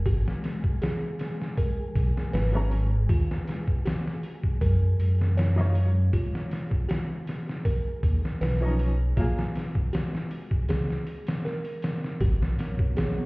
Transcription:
Already playing: G#3 G#4
0.06 G#1 F#4, kick, open hi-hat
0.28 snare
0.44 snare, open hi-hat
0.64 kick
0.82 G#4, snare, open hi-hat
1.19 snare, open hi-hat
1.42 snare
1.57 A#4, kick, open hi-hat
1.95 B1, kick, open hi-hat
2.17 snare
2.33 G#1 B4, snare, open hi-hat
2.52 F#3 B3 C#4
2.57 A#5
2.71 open hi-hat
3.09 D#2 F4, kick, open hi-hat
3.31 snare
3.48 snare, open hi-hat
3.68 kick
3.85 F#4, snare, open hi-hat
4.07 snare
4.23 open hi-hat
4.43 kick
4.61 F#2 A#4, kick, open hi-hat
4.99 F#2, open hi-hat
5.21 snare
5.37 C#5, snare, open hi-hat
5.56 F#3 D#4 F4, snare
5.61 C#5
5.75 open hi-hat
6.13 B1 F4, kick, open hi-hat
6.35 snare
6.51 snare, open hi-hat
6.71 kick
6.89 F#4, snare, open hi-hat
7.27 snare, open hi-hat
7.49 snare
7.65 A#4, kick, open hi-hat
8.03 D#2, kick, open hi-hat
8.25 snare
8.41 B1 B4, snare, open hi-hat
8.61 F3 C#4 D#4
8.65 A#5
8.79 open hi-hat
9.16 A#1 F#3 A#3 F4, kick, open hi-hat
9.21 G#4
9.39 snare
9.55 snare, open hi-hat
9.75 kick
9.93 F#4, snare, open hi-hat
10.15 snare
10.31 open hi-hat
10.51 kick
10.69 C#2 G#4, snare, open hi-hat
10.90 snare
11.07 open hi-hat
11.27 snare, open hi-hat
11.45 A#4, snare
11.65 open hi-hat
11.82 snare, open hi-hat
12.04 snare
12.20 G#1 B3 F#4 A#4 C#5, kick, open hi-hat, impact
12.42 snare
12.59 snare, open hi-hat
12.79 kick
12.97 G#4, snare, open hi-hat

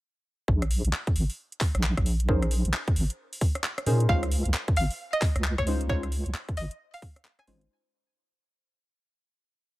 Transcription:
0.48 A#1, kick
0.62 cross-stick, closed hi-hat
0.71 open hi-hat
0.85 A#1, closed hi-hat
0.93 clap
1.07 kick, closed hi-hat
1.16 G#1, open hi-hat
1.30 open hi-hat
1.52 closed hi-hat
1.61 kick, clap, open hi-hat
1.75 A#1, cross-stick, closed hi-hat
1.83 clap
1.97 A#1, kick, cross-stick, closed hi-hat
2.06 open hi-hat
2.20 closed hi-hat
2.29 A#1 C#4 D#4 G#4 A#4 C5, kick
2.42 cross-stick, closed hi-hat
2.51 open hi-hat
2.65 A#1, closed hi-hat
2.74 clap
2.88 kick, closed hi-hat
2.96 G#1, open hi-hat
3.10 closed hi-hat
3.33 open hi-hat
3.41 kick, open hi-hat
3.55 cross-stick, closed hi-hat
3.64 clap
3.78 cross-stick, closed hi-hat
3.86 A#2 C#4 D#4 G#4 A#4 C5, open hi-hat
4.00 closed hi-hat
4.09 C#2 G#3 C#4 D#4 F4 C5 F5, kick
4.23 cross-stick, closed hi-hat
4.32 open hi-hat
4.45 C#2, closed hi-hat
4.54 clap
4.68 kick, closed hi-hat
4.76 G#1 F5, open hi-hat
4.91 open hi-hat
5.13 D#5, closed hi-hat
5.22 kick, clap, open hi-hat
5.36 C#2, cross-stick, closed hi-hat
5.44 clap
5.58 C#2 C#5, kick, cross-stick, closed hi-hat
5.67 G#3 C#4 D#4 F4 C5, open hi-hat
5.81 closed hi-hat
5.89 C#2 G#3 C#4 D#4 F4 C5 C#5, kick
6.03 cross-stick, closed hi-hat
6.12 open hi-hat
6.26 C#2, closed hi-hat
6.34 clap
6.49 kick, closed hi-hat
6.57 G#1 D#5, open hi-hat
6.71 closed hi-hat
6.94 F5, open hi-hat
7.02 kick, open hi-hat
7.16 cross-stick, closed hi-hat
7.25 clap
7.39 G#5, cross-stick, closed hi-hat
7.47 G#1 G#3 C#4 D#4 F4 C5, open hi-hat
7.61 closed hi-hat

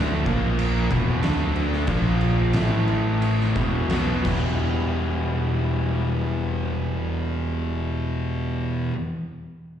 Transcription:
Already playing: D2 D3 A3 D4
0.25 A#1 A#2 F3 A#3, kick, crash
0.59 crash
0.90 E1 E2 B2 E3, kick, crash
1.22 D2 D3 A3 D4, snare, crash
1.56 crash
1.73 snare
1.87 A#1 A#2 F3 A#3, kick, crash
2.21 crash
2.53 A1 A2 E3 A3, snare, crash
2.88 crash
3.22 crash
3.41 snare
3.55 E1 E2 B2 E3, kick, crash
3.89 B1 B2 F#3 B3, snare, crash
4.23 E1 E2 B2 E3 G3 B3, kick, crash
4.28 E3 E4

